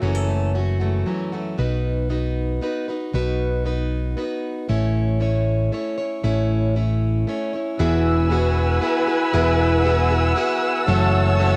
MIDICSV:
0, 0, Header, 1, 5, 480
1, 0, Start_track
1, 0, Key_signature, 4, "major"
1, 0, Tempo, 516796
1, 21, Time_signature, 3, 2, 24, 8
1, 10742, End_track
2, 0, Start_track
2, 0, Title_t, "String section"
2, 0, Program_c, 0, 48
2, 7232, Note_on_c, 0, 80, 80
2, 7232, Note_on_c, 0, 88, 97
2, 7235, Note_on_c, 0, 78, 75
2, 7236, Note_on_c, 0, 71, 93
2, 10072, Note_off_c, 0, 80, 0
2, 10074, Note_off_c, 0, 71, 0
2, 10112, Note_on_c, 0, 73, 92
2, 10113, Note_on_c, 0, 81, 89
2, 10742, Note_off_c, 0, 73, 0
2, 10742, Note_off_c, 0, 78, 0
2, 10742, Note_off_c, 0, 81, 0
2, 10742, Note_off_c, 0, 88, 0
2, 10742, End_track
3, 0, Start_track
3, 0, Title_t, "Steel-string acoustic guitar"
3, 0, Program_c, 1, 25
3, 15, Note_on_c, 1, 42, 77
3, 15, Note_on_c, 1, 54, 68
3, 23, Note_on_c, 1, 52, 74
3, 24, Note_on_c, 1, 57, 72
3, 27, Note_on_c, 1, 61, 75
3, 29, Note_on_c, 1, 66, 80
3, 487, Note_off_c, 1, 52, 0
3, 493, Note_off_c, 1, 57, 0
3, 498, Note_off_c, 1, 61, 0
3, 498, Note_on_c, 1, 52, 56
3, 501, Note_off_c, 1, 42, 0
3, 504, Note_on_c, 1, 57, 59
3, 510, Note_off_c, 1, 66, 0
3, 510, Note_on_c, 1, 61, 59
3, 514, Note_on_c, 1, 66, 60
3, 526, Note_off_c, 1, 54, 0
3, 730, Note_off_c, 1, 66, 0
3, 737, Note_off_c, 1, 61, 0
3, 741, Note_on_c, 1, 66, 40
3, 742, Note_off_c, 1, 52, 0
3, 745, Note_off_c, 1, 57, 0
3, 748, Note_on_c, 1, 61, 42
3, 756, Note_on_c, 1, 57, 43
3, 760, Note_on_c, 1, 52, 35
3, 974, Note_off_c, 1, 52, 0
3, 982, Note_off_c, 1, 57, 0
3, 984, Note_off_c, 1, 66, 0
3, 985, Note_on_c, 1, 52, 55
3, 988, Note_off_c, 1, 61, 0
3, 993, Note_on_c, 1, 57, 64
3, 997, Note_on_c, 1, 61, 59
3, 1007, Note_on_c, 1, 66, 60
3, 1217, Note_off_c, 1, 66, 0
3, 1224, Note_off_c, 1, 61, 0
3, 1227, Note_off_c, 1, 52, 0
3, 1228, Note_on_c, 1, 66, 40
3, 1231, Note_off_c, 1, 57, 0
3, 1236, Note_on_c, 1, 61, 42
3, 1240, Note_on_c, 1, 57, 37
3, 1246, Note_on_c, 1, 52, 32
3, 1461, Note_off_c, 1, 66, 0
3, 1463, Note_off_c, 1, 52, 0
3, 1464, Note_on_c, 1, 47, 60
3, 1466, Note_on_c, 1, 59, 70
3, 1468, Note_off_c, 1, 57, 0
3, 1469, Note_off_c, 1, 61, 0
3, 1471, Note_on_c, 1, 63, 78
3, 1473, Note_on_c, 1, 66, 77
3, 1476, Note_on_c, 1, 71, 72
3, 1933, Note_off_c, 1, 59, 0
3, 1939, Note_off_c, 1, 63, 0
3, 1945, Note_on_c, 1, 59, 54
3, 1946, Note_off_c, 1, 66, 0
3, 1948, Note_off_c, 1, 47, 0
3, 1950, Note_on_c, 1, 63, 63
3, 1954, Note_off_c, 1, 71, 0
3, 1957, Note_on_c, 1, 66, 55
3, 1964, Note_on_c, 1, 71, 66
3, 2417, Note_off_c, 1, 59, 0
3, 2426, Note_off_c, 1, 63, 0
3, 2428, Note_off_c, 1, 66, 0
3, 2428, Note_on_c, 1, 59, 62
3, 2437, Note_on_c, 1, 63, 63
3, 2439, Note_off_c, 1, 71, 0
3, 2439, Note_on_c, 1, 66, 62
3, 2448, Note_on_c, 1, 71, 68
3, 2664, Note_off_c, 1, 71, 0
3, 2671, Note_off_c, 1, 59, 0
3, 2674, Note_off_c, 1, 66, 0
3, 2675, Note_off_c, 1, 63, 0
3, 2675, Note_on_c, 1, 71, 44
3, 2685, Note_on_c, 1, 66, 41
3, 2693, Note_on_c, 1, 63, 37
3, 2906, Note_off_c, 1, 63, 0
3, 2912, Note_on_c, 1, 47, 73
3, 2913, Note_off_c, 1, 66, 0
3, 2915, Note_off_c, 1, 71, 0
3, 2917, Note_on_c, 1, 59, 79
3, 2917, Note_on_c, 1, 63, 80
3, 2924, Note_on_c, 1, 66, 82
3, 2926, Note_on_c, 1, 71, 88
3, 3377, Note_off_c, 1, 59, 0
3, 3384, Note_off_c, 1, 63, 0
3, 3389, Note_off_c, 1, 66, 0
3, 3389, Note_on_c, 1, 59, 55
3, 3393, Note_off_c, 1, 71, 0
3, 3394, Note_off_c, 1, 47, 0
3, 3396, Note_on_c, 1, 63, 54
3, 3400, Note_on_c, 1, 66, 55
3, 3405, Note_on_c, 1, 71, 63
3, 3861, Note_off_c, 1, 59, 0
3, 3868, Note_off_c, 1, 63, 0
3, 3871, Note_off_c, 1, 66, 0
3, 3872, Note_on_c, 1, 59, 62
3, 3878, Note_off_c, 1, 71, 0
3, 3879, Note_on_c, 1, 63, 57
3, 3882, Note_on_c, 1, 66, 67
3, 3889, Note_on_c, 1, 71, 71
3, 4348, Note_off_c, 1, 59, 0
3, 4352, Note_on_c, 1, 57, 71
3, 4353, Note_off_c, 1, 63, 0
3, 4356, Note_on_c, 1, 64, 77
3, 4358, Note_off_c, 1, 66, 0
3, 4358, Note_off_c, 1, 71, 0
3, 4362, Note_on_c, 1, 61, 83
3, 4362, Note_on_c, 1, 73, 82
3, 4817, Note_off_c, 1, 57, 0
3, 4828, Note_off_c, 1, 61, 0
3, 4828, Note_on_c, 1, 57, 60
3, 4830, Note_off_c, 1, 64, 0
3, 4834, Note_on_c, 1, 64, 57
3, 4837, Note_off_c, 1, 73, 0
3, 4839, Note_on_c, 1, 61, 61
3, 4848, Note_on_c, 1, 73, 64
3, 5302, Note_off_c, 1, 57, 0
3, 5311, Note_off_c, 1, 61, 0
3, 5314, Note_on_c, 1, 57, 63
3, 5317, Note_off_c, 1, 64, 0
3, 5321, Note_off_c, 1, 73, 0
3, 5321, Note_on_c, 1, 64, 60
3, 5322, Note_on_c, 1, 61, 66
3, 5332, Note_on_c, 1, 73, 66
3, 5540, Note_off_c, 1, 73, 0
3, 5547, Note_off_c, 1, 61, 0
3, 5551, Note_on_c, 1, 73, 53
3, 5556, Note_off_c, 1, 57, 0
3, 5556, Note_off_c, 1, 64, 0
3, 5558, Note_on_c, 1, 61, 41
3, 5568, Note_on_c, 1, 64, 43
3, 5783, Note_off_c, 1, 64, 0
3, 5791, Note_off_c, 1, 61, 0
3, 5791, Note_on_c, 1, 57, 71
3, 5795, Note_off_c, 1, 73, 0
3, 5795, Note_on_c, 1, 64, 83
3, 5802, Note_on_c, 1, 61, 96
3, 5806, Note_on_c, 1, 73, 92
3, 6258, Note_off_c, 1, 57, 0
3, 6269, Note_off_c, 1, 64, 0
3, 6269, Note_on_c, 1, 57, 58
3, 6270, Note_off_c, 1, 61, 0
3, 6276, Note_off_c, 1, 73, 0
3, 6280, Note_on_c, 1, 64, 65
3, 6282, Note_on_c, 1, 61, 66
3, 6287, Note_on_c, 1, 73, 69
3, 6743, Note_off_c, 1, 57, 0
3, 6748, Note_off_c, 1, 64, 0
3, 6754, Note_on_c, 1, 57, 64
3, 6755, Note_off_c, 1, 61, 0
3, 6760, Note_on_c, 1, 64, 59
3, 6762, Note_off_c, 1, 73, 0
3, 6766, Note_on_c, 1, 61, 77
3, 6772, Note_on_c, 1, 73, 69
3, 6984, Note_off_c, 1, 73, 0
3, 6995, Note_off_c, 1, 57, 0
3, 6995, Note_off_c, 1, 61, 0
3, 6995, Note_on_c, 1, 73, 50
3, 6998, Note_off_c, 1, 64, 0
3, 7006, Note_on_c, 1, 61, 41
3, 7017, Note_on_c, 1, 64, 39
3, 7230, Note_off_c, 1, 64, 0
3, 7235, Note_off_c, 1, 73, 0
3, 7236, Note_on_c, 1, 52, 85
3, 7237, Note_on_c, 1, 59, 88
3, 7241, Note_off_c, 1, 61, 0
3, 7241, Note_on_c, 1, 64, 98
3, 7245, Note_on_c, 1, 68, 91
3, 7249, Note_on_c, 1, 66, 85
3, 7695, Note_off_c, 1, 59, 0
3, 7707, Note_on_c, 1, 59, 71
3, 7708, Note_off_c, 1, 64, 0
3, 7710, Note_off_c, 1, 68, 0
3, 7712, Note_on_c, 1, 64, 67
3, 7721, Note_on_c, 1, 68, 76
3, 7723, Note_off_c, 1, 66, 0
3, 7727, Note_on_c, 1, 66, 88
3, 7755, Note_off_c, 1, 52, 0
3, 8175, Note_off_c, 1, 59, 0
3, 8187, Note_off_c, 1, 64, 0
3, 8187, Note_on_c, 1, 59, 74
3, 8188, Note_off_c, 1, 68, 0
3, 8190, Note_on_c, 1, 64, 80
3, 8199, Note_on_c, 1, 68, 68
3, 8204, Note_off_c, 1, 66, 0
3, 8207, Note_on_c, 1, 66, 76
3, 8406, Note_off_c, 1, 66, 0
3, 8415, Note_off_c, 1, 68, 0
3, 8418, Note_on_c, 1, 66, 54
3, 8426, Note_off_c, 1, 64, 0
3, 8427, Note_on_c, 1, 68, 53
3, 8429, Note_off_c, 1, 59, 0
3, 8437, Note_on_c, 1, 64, 46
3, 8660, Note_off_c, 1, 64, 0
3, 8661, Note_off_c, 1, 68, 0
3, 8664, Note_off_c, 1, 66, 0
3, 8667, Note_on_c, 1, 52, 83
3, 8668, Note_on_c, 1, 59, 87
3, 8671, Note_on_c, 1, 64, 106
3, 8672, Note_on_c, 1, 68, 82
3, 8680, Note_on_c, 1, 66, 106
3, 9131, Note_off_c, 1, 59, 0
3, 9143, Note_on_c, 1, 59, 77
3, 9146, Note_off_c, 1, 68, 0
3, 9147, Note_off_c, 1, 64, 0
3, 9150, Note_on_c, 1, 64, 68
3, 9158, Note_off_c, 1, 66, 0
3, 9158, Note_on_c, 1, 68, 75
3, 9161, Note_on_c, 1, 66, 81
3, 9189, Note_off_c, 1, 52, 0
3, 9371, Note_off_c, 1, 66, 0
3, 9380, Note_off_c, 1, 68, 0
3, 9382, Note_on_c, 1, 66, 56
3, 9384, Note_off_c, 1, 59, 0
3, 9388, Note_off_c, 1, 64, 0
3, 9391, Note_on_c, 1, 68, 53
3, 9400, Note_on_c, 1, 64, 45
3, 9609, Note_off_c, 1, 64, 0
3, 9615, Note_on_c, 1, 59, 73
3, 9616, Note_off_c, 1, 68, 0
3, 9620, Note_on_c, 1, 64, 65
3, 9623, Note_off_c, 1, 66, 0
3, 9627, Note_on_c, 1, 68, 73
3, 9635, Note_on_c, 1, 66, 84
3, 10096, Note_on_c, 1, 42, 92
3, 10097, Note_off_c, 1, 59, 0
3, 10099, Note_on_c, 1, 54, 96
3, 10101, Note_on_c, 1, 52, 110
3, 10104, Note_off_c, 1, 64, 0
3, 10104, Note_off_c, 1, 68, 0
3, 10105, Note_off_c, 1, 66, 0
3, 10108, Note_on_c, 1, 57, 102
3, 10108, Note_on_c, 1, 66, 104
3, 10110, Note_on_c, 1, 61, 88
3, 10564, Note_off_c, 1, 52, 0
3, 10572, Note_off_c, 1, 57, 0
3, 10575, Note_on_c, 1, 52, 75
3, 10577, Note_off_c, 1, 42, 0
3, 10580, Note_off_c, 1, 61, 0
3, 10583, Note_on_c, 1, 57, 74
3, 10591, Note_on_c, 1, 61, 80
3, 10592, Note_off_c, 1, 66, 0
3, 10596, Note_on_c, 1, 66, 89
3, 10603, Note_off_c, 1, 54, 0
3, 10742, Note_off_c, 1, 52, 0
3, 10742, Note_off_c, 1, 57, 0
3, 10742, Note_off_c, 1, 61, 0
3, 10742, Note_off_c, 1, 66, 0
3, 10742, End_track
4, 0, Start_track
4, 0, Title_t, "Steel-string acoustic guitar"
4, 0, Program_c, 2, 25
4, 0, Note_on_c, 2, 54, 51
4, 0, Note_on_c, 2, 57, 59
4, 136, Note_on_c, 2, 69, 56
4, 254, Note_off_c, 2, 57, 0
4, 265, Note_on_c, 2, 57, 53
4, 501, Note_off_c, 2, 69, 0
4, 741, Note_off_c, 2, 57, 0
4, 981, Note_off_c, 2, 54, 0
4, 985, Note_on_c, 2, 54, 58
4, 1439, Note_off_c, 2, 54, 0
4, 10742, End_track
5, 0, Start_track
5, 0, Title_t, "Fingered electric bass"
5, 0, Program_c, 3, 33
5, 20, Note_on_c, 3, 30, 79
5, 949, Note_off_c, 3, 30, 0
5, 1473, Note_on_c, 3, 35, 77
5, 2397, Note_off_c, 3, 35, 0
5, 2914, Note_on_c, 3, 35, 79
5, 3839, Note_off_c, 3, 35, 0
5, 4359, Note_on_c, 3, 33, 87
5, 5282, Note_off_c, 3, 33, 0
5, 5794, Note_on_c, 3, 33, 82
5, 6718, Note_off_c, 3, 33, 0
5, 7238, Note_on_c, 3, 28, 85
5, 8157, Note_off_c, 3, 28, 0
5, 8673, Note_on_c, 3, 28, 91
5, 9589, Note_off_c, 3, 28, 0
5, 10102, Note_on_c, 3, 30, 103
5, 10742, Note_off_c, 3, 30, 0
5, 10742, End_track
0, 0, End_of_file